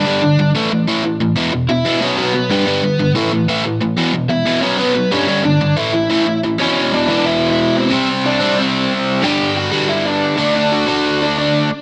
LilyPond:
<<
  \new Staff \with { instrumentName = "Lead electric guitar" } { \time 4/4 \key a \lydian \tempo 4 = 183 <d' d''>4. r2 r8 | r4 <e' e''>4 <cis' cis''>8 <b b'>4 <b b'>8~ | <b b'>4. r2 r8 | r4 <e' e''>4 <cis' cis''>8 <b b'>4 <cis' cis''>8~ |
<cis' cis''>8 <d' d''>4 <e' e''>2 r8 | \key d \lydian <cis' cis''>4 <d' d''>4 <e' e''>8. <e' e''>8. <c' c''>8~ | <c' c''>8 r8 <d' d''>4 <c' c''>4 r4 | <g' g''>4 <fis' fis''>4 <e' e''>8 <d' d''>4. |
<d' d''>8 <fis' fis''>4. <d' d''>8 <d' d''>4 r8 | }
  \new Staff \with { instrumentName = "Overdriven electric guitar" } { \clef bass \time 4/4 \key a \lydian <g, d g>8 <g, d>8 <g, d>8 <a, e a>8 <a, e>8 <a, e a>8 <a, e>8 <a, e>8 | <e, b, e>8 <e, b,>8 <e, b,>8 <e, b, e>8 <b, fis b>8 <b, fis b>8 <b, fis>8 <g, d g>8 | <g, d g>8 <g, d>8 <g, d>8 <a, e a>8 <a, e>8 <a, e a>8 <a, e>8 <a, e>8 | <e, b, e>8 <e, b,>8 <e, b,>8 <e, b, e>8 <b, fis b>8 <b, fis b>8 <b, fis>8 <g, d g>8 |
<g, d g>8 <g, d>8 <g, d>8 <a, e a>8 <a, e>8 <a, e a>8 <a, e>8 <a, e>8 | \key d \lydian <e, b, e>4. <e, b, e>2~ <e, b, e>8 | <c g c'>4. <c g c'>2~ <c g c'>8 | <g, d g>4. <g, d g>2 <d a d'>8~ |
<d a d'>4 <d a d'>2~ <d a d'>8 r8 | }
>>